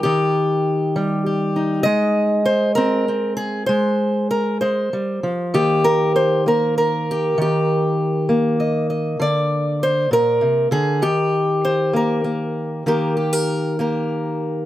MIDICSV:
0, 0, Header, 1, 2, 480
1, 0, Start_track
1, 0, Key_signature, -3, "major"
1, 0, Tempo, 606061
1, 36, Time_signature, 6, 3, 24, 8
1, 2916, Tempo, 612245
1, 11519, End_track
2, 0, Start_track
2, 0, Title_t, "Steel-string acoustic guitar"
2, 0, Program_c, 0, 25
2, 25, Note_on_c, 0, 67, 80
2, 39, Note_on_c, 0, 51, 81
2, 759, Note_on_c, 0, 55, 67
2, 986, Note_off_c, 0, 67, 0
2, 1001, Note_on_c, 0, 67, 47
2, 1235, Note_on_c, 0, 63, 48
2, 1445, Note_off_c, 0, 51, 0
2, 1446, Note_off_c, 0, 55, 0
2, 1448, Note_off_c, 0, 67, 0
2, 1451, Note_on_c, 0, 75, 106
2, 1468, Note_on_c, 0, 56, 77
2, 1941, Note_off_c, 0, 63, 0
2, 1945, Note_on_c, 0, 72, 92
2, 2176, Note_off_c, 0, 72, 0
2, 2179, Note_on_c, 0, 70, 99
2, 2196, Note_on_c, 0, 60, 68
2, 2423, Note_off_c, 0, 75, 0
2, 2432, Note_off_c, 0, 60, 0
2, 2442, Note_on_c, 0, 60, 44
2, 2663, Note_off_c, 0, 70, 0
2, 2666, Note_on_c, 0, 68, 84
2, 2886, Note_off_c, 0, 56, 0
2, 2892, Note_off_c, 0, 60, 0
2, 2899, Note_off_c, 0, 68, 0
2, 2902, Note_on_c, 0, 72, 94
2, 2921, Note_on_c, 0, 56, 81
2, 3393, Note_off_c, 0, 72, 0
2, 3406, Note_on_c, 0, 70, 88
2, 3639, Note_off_c, 0, 70, 0
2, 3641, Note_off_c, 0, 56, 0
2, 3642, Note_on_c, 0, 72, 82
2, 3650, Note_on_c, 0, 56, 55
2, 3890, Note_off_c, 0, 56, 0
2, 3895, Note_on_c, 0, 55, 58
2, 4129, Note_off_c, 0, 55, 0
2, 4132, Note_on_c, 0, 53, 59
2, 4371, Note_off_c, 0, 72, 0
2, 4371, Note_on_c, 0, 51, 80
2, 4373, Note_off_c, 0, 53, 0
2, 4376, Note_on_c, 0, 58, 54
2, 4376, Note_on_c, 0, 67, 85
2, 4611, Note_on_c, 0, 70, 93
2, 4853, Note_off_c, 0, 70, 0
2, 4857, Note_on_c, 0, 72, 86
2, 5093, Note_off_c, 0, 58, 0
2, 5096, Note_off_c, 0, 72, 0
2, 5096, Note_on_c, 0, 58, 56
2, 5097, Note_off_c, 0, 67, 0
2, 5108, Note_on_c, 0, 70, 85
2, 5333, Note_off_c, 0, 70, 0
2, 5343, Note_on_c, 0, 70, 94
2, 5604, Note_on_c, 0, 67, 80
2, 5787, Note_off_c, 0, 51, 0
2, 5814, Note_on_c, 0, 51, 79
2, 5829, Note_off_c, 0, 67, 0
2, 5843, Note_on_c, 0, 67, 75
2, 6058, Note_off_c, 0, 70, 0
2, 6525, Note_off_c, 0, 58, 0
2, 6528, Note_on_c, 0, 58, 63
2, 6767, Note_off_c, 0, 67, 0
2, 6770, Note_on_c, 0, 75, 46
2, 6997, Note_off_c, 0, 75, 0
2, 7007, Note_on_c, 0, 75, 47
2, 7214, Note_off_c, 0, 51, 0
2, 7215, Note_off_c, 0, 75, 0
2, 7239, Note_on_c, 0, 50, 82
2, 7254, Note_on_c, 0, 74, 94
2, 7736, Note_on_c, 0, 72, 90
2, 7951, Note_off_c, 0, 50, 0
2, 7955, Note_on_c, 0, 46, 60
2, 7965, Note_off_c, 0, 72, 0
2, 7971, Note_on_c, 0, 70, 105
2, 8192, Note_on_c, 0, 48, 64
2, 8194, Note_off_c, 0, 46, 0
2, 8200, Note_off_c, 0, 74, 0
2, 8424, Note_off_c, 0, 48, 0
2, 8427, Note_on_c, 0, 50, 69
2, 8431, Note_off_c, 0, 70, 0
2, 8434, Note_on_c, 0, 68, 98
2, 8667, Note_off_c, 0, 50, 0
2, 8669, Note_on_c, 0, 51, 80
2, 8670, Note_off_c, 0, 68, 0
2, 8673, Note_on_c, 0, 67, 89
2, 9160, Note_on_c, 0, 72, 90
2, 9184, Note_off_c, 0, 58, 0
2, 9386, Note_on_c, 0, 58, 65
2, 9394, Note_off_c, 0, 72, 0
2, 9408, Note_on_c, 0, 70, 73
2, 9619, Note_off_c, 0, 58, 0
2, 9629, Note_on_c, 0, 58, 44
2, 10082, Note_off_c, 0, 51, 0
2, 10107, Note_off_c, 0, 58, 0
2, 10113, Note_off_c, 0, 67, 0
2, 10113, Note_on_c, 0, 51, 67
2, 10116, Note_on_c, 0, 58, 58
2, 10117, Note_off_c, 0, 70, 0
2, 10124, Note_on_c, 0, 67, 60
2, 10128, Note_on_c, 0, 70, 66
2, 10349, Note_off_c, 0, 70, 0
2, 10352, Note_off_c, 0, 67, 0
2, 10352, Note_on_c, 0, 67, 51
2, 10478, Note_off_c, 0, 67, 0
2, 10478, Note_on_c, 0, 70, 45
2, 10838, Note_off_c, 0, 58, 0
2, 10838, Note_off_c, 0, 70, 0
2, 10841, Note_on_c, 0, 58, 50
2, 10847, Note_on_c, 0, 67, 45
2, 10855, Note_on_c, 0, 70, 57
2, 11519, Note_off_c, 0, 51, 0
2, 11519, Note_off_c, 0, 58, 0
2, 11519, Note_off_c, 0, 67, 0
2, 11519, Note_off_c, 0, 70, 0
2, 11519, End_track
0, 0, End_of_file